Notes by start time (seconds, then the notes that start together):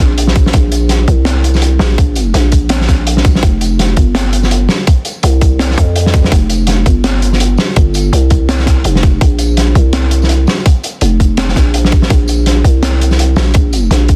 0.00 A#1
0.18 closed hi-hat
0.28 snare
0.35 kick, closed hi-hat, tambourine
0.46 snare
0.53 A#1, kick, closed hi-hat
0.72 closed hi-hat, tambourine
0.89 snare, closed hi-hat
1.08 C2, kick, closed hi-hat
1.25 snare, closed hi-hat
1.44 closed hi-hat
1.54 snare, tambourine
1.62 closed hi-hat
1.79 A#1, snare, tambourine
1.98 kick, closed hi-hat
2.16 closed hi-hat, tambourine
2.34 A#1, snare, closed hi-hat
2.52 kick, closed hi-hat
2.69 snare, closed hi-hat, tambourine
2.81 snare
2.88 kick, snare, closed hi-hat
3.07 closed hi-hat
3.17 snare
3.25 kick, closed hi-hat, tambourine
3.35 snare
3.43 F1, kick, closed hi-hat
3.61 closed hi-hat, tambourine
3.79 snare, closed hi-hat
3.97 G1, kick, closed hi-hat
4.15 snare, closed hi-hat
4.33 closed hi-hat
4.43 snare, tambourine
4.51 closed hi-hat
4.69 snare, tambourine
4.87 kick, closed hi-hat
5.05 closed hi-hat, tambourine
5.23 C2, closed hi-hat
5.41 kick, closed hi-hat
5.59 snare, closed hi-hat, tambourine
5.71 snare
5.78 F2, kick, closed hi-hat
5.96 closed hi-hat
6.06 snare
6.13 kick, closed hi-hat, tambourine
6.24 snare
6.32 F1, kick, closed hi-hat
6.50 closed hi-hat, tambourine
6.67 snare, closed hi-hat
6.86 G1, kick, closed hi-hat
7.04 snare, closed hi-hat
7.22 closed hi-hat
7.33 snare, tambourine
7.40 closed hi-hat
7.58 snare, tambourine
7.76 G1, kick, closed hi-hat
7.94 closed hi-hat, tambourine
8.13 C2, closed hi-hat
8.30 kick, closed hi-hat
8.49 snare, closed hi-hat, tambourine
8.59 snare
8.66 kick, snare, closed hi-hat
8.84 F1, closed hi-hat
8.95 snare
9.03 kick, closed hi-hat, tambourine
9.21 A#1, kick, closed hi-hat
9.39 closed hi-hat, tambourine
9.57 snare, closed hi-hat
9.75 C2, kick, closed hi-hat
9.93 snare, closed hi-hat
10.11 closed hi-hat
10.22 snare, tambourine
10.29 closed hi-hat
10.47 snare, tambourine
10.66 kick, closed hi-hat
10.83 closed hi-hat, tambourine
11.01 F1, closed hi-hat
11.20 kick, closed hi-hat
11.37 snare, closed hi-hat, tambourine
11.48 snare
11.56 A#1, kick, snare, closed hi-hat
11.74 closed hi-hat
11.85 snare
11.92 kick, closed hi-hat, tambourine
12.02 snare
12.10 A#1, kick, closed hi-hat
12.28 closed hi-hat, tambourine
12.46 snare, closed hi-hat
12.64 C2, kick, closed hi-hat
12.83 snare, closed hi-hat
13.01 closed hi-hat
13.11 snare, tambourine
13.19 closed hi-hat
13.36 A#1, snare, tambourine
13.54 kick, closed hi-hat
13.73 closed hi-hat, tambourine
13.91 A#1, snare, closed hi-hat
14.08 kick, closed hi-hat